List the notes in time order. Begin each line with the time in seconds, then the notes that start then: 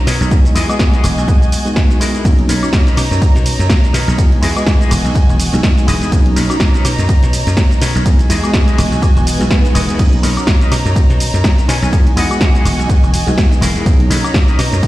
Already playing: C#4 D#4 F#4 C#5 A#5
0.06 B2 D#4 A#4 B4 C#5, open hi-hat, shaker
0.21 B1, closed hi-hat, shaker
0.31 G#3 B3 D#4 F#4 D#5 G#5, kick, closed hi-hat, shaker
0.45 closed hi-hat, shaker
0.55 E2 E4 F#4 G#4 D#5, open hi-hat, shaker
0.68 G#3 B3 F#4 D#5, closed hi-hat, high woodblock, shaker
0.79 kick, snare, closed hi-hat, shaker
0.93 E4 F#4 G#4 D#5, closed hi-hat, shaker
1.04 E1, open hi-hat, high woodblock, shaker
1.17 B1, muted clean electric guitar stroke, closed hi-hat, shaker
1.28 G#2, kick, closed hi-hat, shaker
1.42 closed hi-hat, shaker
1.52 open hi-hat, shaker
1.65 G#3 B3 D#4 F#4, closed hi-hat, shaker
1.76 kick, snare, closed hi-hat, shaker
1.90 muted clean electric guitar stroke, closed hi-hat, shaker
2.00 E4 F#4 G#4 A#4, open hi-hat, shaker
2.15 closed hi-hat, shaker
2.25 B1 A#3 C#4 D#4 F#4 C#5 A#5, kick, closed hi-hat, ride, shaker
2.39 closed hi-hat
2.48 B1 D#4 A#4 B4 C#5, open hi-hat, ride, shaker
2.63 C#4 D#4 F#4, closed hi-hat, high woodblock, shaker
2.73 kick, snare, closed hi-hat, ride, shaker
2.87 D#4 A#4 B4 C#5, closed hi-hat, shaker
2.97 B2, open hi-hat, ride, high woodblock, shaker
3.11 F#2, muted clean electric guitar stroke, shaker
3.22 kick, closed hi-hat, ride, shaker
3.35 B2, closed hi-hat, shaker
3.46 open hi-hat, ride, shaker
3.59 F#2, closed hi-hat, shaker
3.69 kick, snare, closed hi-hat, ride, shaker
3.84 muted clean electric guitar stroke, closed hi-hat, shaker
3.93 B2 D#4 A#4 B4 C#5, open hi-hat, ride, shaker
4.08 B1, closed hi-hat, shaker
4.18 G#3 B3 D#4 F#4 D#5 G#5, kick, closed hi-hat, ride, shaker
4.32 closed hi-hat
4.42 E2 E4 F#4 G#4 D#5, open hi-hat, ride, shaker
4.55 G#3 B3 F#4 D#5, closed hi-hat, high woodblock, shaker
4.67 kick, snare, closed hi-hat, ride, shaker
4.80 E4 F#4 G#4 D#5, closed hi-hat, shaker
4.91 E1, open hi-hat, ride, high woodblock, shaker
5.04 B1, muted clean electric guitar stroke, closed hi-hat, shaker
5.15 kick, closed hi-hat, ride, shaker
5.29 E1, closed hi-hat, shaker
5.40 open hi-hat, ride, shaker
5.53 B1 G#3 B3 D#4 F#4, closed hi-hat, shaker
5.63 kick, snare, closed hi-hat, ride, shaker
5.77 muted clean electric guitar stroke, closed hi-hat, shaker
5.87 E1 E4 F#4 G#4 D#5, open hi-hat, ride, shaker
6.02 E2, closed hi-hat, shaker
6.12 B1 A#3 C#4 D#4 F#4 C#5 A#5, kick, closed hi-hat, ride, shaker
6.26 closed hi-hat
6.36 B1 D#4 A#4 B4 C#5, open hi-hat, ride, shaker
6.49 C#4 D#4 F#4, closed hi-hat, high woodblock, shaker
6.60 kick, snare, closed hi-hat, ride, shaker
6.74 D#4 A#4 B4 C#5, closed hi-hat, shaker
6.85 B2, open hi-hat, ride, high woodblock, shaker
6.98 F#2, muted clean electric guitar stroke, closed hi-hat, shaker
7.09 kick, closed hi-hat, ride, shaker
7.23 B2, closed hi-hat, shaker
7.33 open hi-hat, ride, shaker
7.47 F#2, closed hi-hat, shaker
7.57 kick, snare, closed hi-hat, ride, shaker
7.71 muted clean electric guitar stroke, closed hi-hat, shaker
7.81 B2 D#4 A#4 B4 C#5, open hi-hat, ride, shaker
7.95 B1, closed hi-hat, shaker
8.05 E2 G#3 B3 D#4 F#4 D#5 G#5, kick, closed hi-hat, ride, shaker
8.19 closed hi-hat, shaker
8.29 E2 E4 F#4 G#4 D#5, open hi-hat, ride, shaker
8.43 G#3 B3 F#4 D#5, closed hi-hat, high woodblock, shaker
8.54 kick, snare, closed hi-hat, ride, shaker
8.68 E4 F#4 G#4 D#5, closed hi-hat, shaker
8.78 E1, snare, open hi-hat, ride, high woodblock, shaker
8.91 B1, muted clean electric guitar stroke, closed hi-hat, shaker
9.02 kick, closed hi-hat, ride, swell, high woodblock, shaker
9.16 E1, closed hi-hat, shaker
9.27 open hi-hat, ride, shaker
9.39 B1 G#3 B3 D#4 F#4, closed hi-hat, shaker
9.51 kick, snare, closed hi-hat, ride, shaker
9.64 muted clean electric guitar stroke, closed hi-hat, shaker
9.74 E1 E4 F#4 G#4 D#5, open hi-hat, ride, shaker
9.89 E2, closed hi-hat, shaker
9.98 B1 A#3 C#4 D#4 F#4 C#5 A#5, kick, closed hi-hat, ride, crash, shaker
10.13 closed hi-hat
10.23 B1 D#4 A#4 B4 C#5, open hi-hat, ride, shaker
10.37 C#4 D#4 F#4, closed hi-hat, high woodblock, shaker
10.47 kick, snare, closed hi-hat, ride, shaker
10.61 D#4 A#4 B4 D#5, closed hi-hat, shaker
10.72 B2, open hi-hat, ride, high woodblock, shaker
10.85 F#2, muted clean electric guitar stroke, closed hi-hat, shaker
10.96 muted slap bass stroke, kick, closed hi-hat, ride, shaker
11.10 B2, closed hi-hat, shaker
11.20 open hi-hat, ride, shaker
11.34 F#2, closed hi-hat, shaker
11.44 kick, snare, closed hi-hat, ride, shaker
11.58 muted clean electric guitar stroke, closed hi-hat, shaker
11.68 B2 D#4 A#4 B4 C#5 G#5, open hi-hat, ride, shaker
11.82 B1 G#5, closed hi-hat, shaker
11.92 E2 G#3 B3 D#4 F#4 D#5 G#5, kick, closed hi-hat, ride, shaker
12.07 closed hi-hat
12.16 E2 E4 F#4 G#4 D#5 F#5, open hi-hat, ride, shaker
12.30 G#3 B3 F#4 D#5, closed hi-hat, high woodblock, shaker
12.41 kick, snare, closed hi-hat, ride, shaker
12.54 E4 F#4 G#4 D#5, closed hi-hat, shaker
12.65 E1, open hi-hat, ride, high woodblock, shaker
12.78 B1, muted clean electric guitar stroke, closed hi-hat, shaker
12.89 kick, closed hi-hat, ride, shaker
13.03 E1, closed hi-hat, shaker
13.14 open hi-hat, ride, shaker
13.27 B1 G#3 B3 D#4 F#4, closed hi-hat, shaker
13.38 kick, snare, closed hi-hat, ride, shaker
13.51 muted clean electric guitar stroke, closed hi-hat, shaker
13.61 E1 E4 F#4 G#4 A#4, open hi-hat, ride, shaker
13.76 E2, closed hi-hat, shaker
13.85 B1 A#3 C#4 D#4 F#4 C#5 A#5, kick, closed hi-hat, ride, shaker
14.00 closed hi-hat
14.10 B1 D#4 A#4 B4 C#5, open hi-hat, ride, shaker
14.23 C#4 D#4 F#4, closed hi-hat, high woodblock, shaker
14.34 kick, snare, closed hi-hat, ride, shaker
14.48 D#4 A#4 B4 D#5, closed hi-hat, shaker
14.59 B2, open hi-hat, ride, high woodblock, shaker
14.72 F#2, closed hi-hat, shaker
14.83 muted slap bass stroke, kick, closed hi-hat, ride, shaker